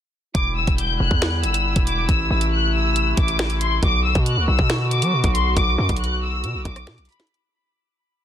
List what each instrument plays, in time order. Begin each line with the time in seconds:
0.35 808-style bass E1, woodwind section D3 G3 E4, violin section D6, kick, closed hi-hat
0.57 violin section E6
0.67 808-style bass E1, kick, closed hi-hat
0.78 violin section G6, closed hi-hat
1.00 808-style bass E1, violin section F#6
1.11 808-style bass E2, kick
1.22 finger snap, snare, closed hi-hat
1.44 808-style bass G1, violin section E6, closed hi-hat
1.54 closed hi-hat
1.76 808-style bass E1, kick, closed hi-hat
1.87 violin section D6, closed hi-hat
2.08 808-style bass A1, woodwind section C3 A3, violin section E6, kick, closed hi-hat
2.30 808-style bass A1, violin section E6
2.41 closed hi-hat
2.52 violin section F#6
2.74 violin section E6
2.96 closed hi-hat
3.17 808-style bass A1, violin section D6, kick, closed hi-hat
3.28 closed hi-hat
3.39 finger snap, snare, closed hi-hat
3.50 closed hi-hat
3.61 violin section C6, closed hi-hat
3.83 808-style bass B1, woodwind section D3 B3 F#4, violin section D6, kick, closed hi-hat
4.04 violin section E6
4.15 808-style bass B2, kick, closed hi-hat
4.26 violin section F#6, closed hi-hat
4.37 808-style bass D2
4.48 808-style bass B1, violin section E6
4.59 808-style bass B2, kick
4.70 finger snap, snare, closed hi-hat
4.91 violin section D6, closed hi-hat
5.02 808-style bass F#3, closed hi-hat
5.13 808-style bass B2
5.24 808-style bass B1, kick, closed hi-hat
5.34 violin section C6, closed hi-hat
5.56 808-style bass B1, violin section D6, kick, closed hi-hat
5.78 808-style bass F#2, violin section D6
5.89 808-style bass B1, kick, closed hi-hat
5.96 violin section F#6, closed hi-hat
6.04 closed hi-hat
6.22 violin section E6
6.44 808-style bass B2, closed hi-hat
6.54 808-style bass B1
6.65 808-style bass B1, violin section D6, kick, closed hi-hat
6.76 cross-stick, closed hi-hat
6.87 808-style bass B2, finger snap, snare, closed hi-hat
6.98 808-style bass B1, closed hi-hat
7.05 violin section B5, closed hi-hat, open hi-hat
7.12 closed hi-hat
7.20 snare, closed hi-hat
7.27 closed hi-hat
7.34 closed hi-hat